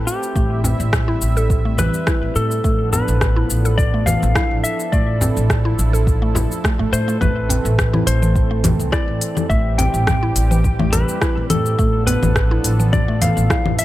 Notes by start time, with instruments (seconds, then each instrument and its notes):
Already playing: analog synth pad A3 C4 E4 A4, synth pluck E4
0.07 electric slide guitar G4, cabasa
0.23 cabasa
0.36 upright bass A1, analog synth pad G3 E5, synth pluck A3, kick, cabasa
0.64 synth pluck C4, frame drum, cabasa
0.80 upright bass A1, cabasa
0.93 kick, cross-stick, cabasa
1.08 synth pluck E4
1.22 upright bass A1, cabasa
1.37 synth pluck A4, cabasa
1.50 kick, cabasa
1.65 synth pluck A3
1.78 synth pluck E3, electric slide guitar B4, frame drum, cabasa
1.94 cabasa
2.07 synth pluck E4, kick, cross-stick, cabasa
2.23 upright bass A2
2.36 upright bass A2, electric slide guitar A4, cabasa
2.51 cabasa
2.64 upright bass A1, analog synth pad F3 B3 D4 A4, synth pluck A3, kick, cabasa
2.93 synth pluck B3, electric slide guitar B4, frame drum, cabasa
3.08 upright bass A1, cabasa
3.21 kick, cross-stick, cabasa
3.36 synth pluck E4
3.50 upright bass A1, cabasa
3.65 synth pluck A4, cabasa
3.78 electric slide guitar D5, kick, cabasa
3.94 synth pluck A3
4.06 synth pluck E3, electric slide guitar F5, frame drum, cabasa
4.23 upright bass A1, cabasa
4.35 synth pluck E4, kick, cross-stick, cabasa
4.51 upright bass A1
4.64 electric slide guitar E5, cabasa
4.80 cabasa
4.92 upright bass A1, analog synth pad F3 E4, synth pluck A3, electric slide guitar D5, kick, cabasa
5.21 synth pluck C4, frame drum, cabasa
5.37 upright bass A1, cabasa
5.50 kick, cross-stick, cabasa
5.65 synth pluck E4
5.79 upright bass A1, cabasa
5.93 synth pluck A4, cabasa
6.07 kick, cabasa
6.22 synth pluck A3
6.35 synth pluck E4, frame drum, cabasa
6.52 cabasa
6.64 synth pluck A3, kick, cross-stick, cabasa
6.79 upright bass A2, synth pluck A3
6.92 upright bass A2, synth pluck A3, electric slide guitar C5, cabasa
7.08 synth pluck A3, cabasa
7.21 upright bass A1, analog synth pad E3 A3 C4, synth pluck A3, electric slide guitar B4, kick, low conga, cabasa
7.49 synth pluck C4, closed hi-hat, frame drum, cabasa
7.65 upright bass A1, cabasa
7.78 kick, cross-stick, cabasa
7.93 synth pluck E4, low conga
8.07 upright bass A1, electric slide guitar C5, closed hi-hat, cabasa
8.22 synth pluck E3, cabasa
8.36 kick, cabasa
8.51 synth pluck A3
8.64 synth pluck E3, closed hi-hat, low conga, frame drum, cabasa
8.79 upright bass C2, cabasa
8.92 synth pluck E4, electric slide guitar D5, kick, cross-stick, cabasa
9.08 upright bass A1
9.21 closed hi-hat, cabasa
9.37 low conga, cabasa
9.50 upright bass A1, analog synth pad G3 G4, synth pluck A3, electric slide guitar E5, kick, cabasa
9.78 synth pluck C4, electric slide guitar G5, closed hi-hat, frame drum, cabasa
9.94 upright bass A1, cabasa
10.07 kick, cross-stick, low conga, cabasa
10.23 synth pluck E4
10.36 upright bass A1, closed hi-hat, cabasa
10.51 synth pluck E3, cabasa
10.64 kick, cabasa
10.79 synth pluck A3, low conga
10.93 synth pluck E3, electric slide guitar B4, closed hi-hat, frame drum, cabasa
11.09 cabasa
11.21 synth pluck E4, kick, cross-stick, cabasa
11.37 upright bass A2
11.50 upright bass A2, electric slide guitar A4, closed hi-hat, low conga, cabasa
11.66 cabasa
11.78 upright bass A1, analog synth pad F3 B3 D4 A4, synth pluck A3, kick, cabasa
12.07 synth pluck B3, electric slide guitar B4, closed hi-hat, frame drum, cabasa
12.23 upright bass A1, low conga, cabasa
12.36 kick, cross-stick, cabasa
12.51 synth pluck E4
12.64 upright bass A1, closed hi-hat, cabasa
12.80 synth pluck E3, cabasa
12.93 electric slide guitar D5, kick, low conga, cabasa
13.08 synth pluck A3
13.22 synth pluck E3, electric slide guitar F5, closed hi-hat, frame drum, cabasa
13.37 upright bass A1, cabasa
13.50 synth pluck E4, kick, cross-stick, cabasa
13.65 upright bass A1, low conga
13.79 electric slide guitar E5, closed hi-hat, cabasa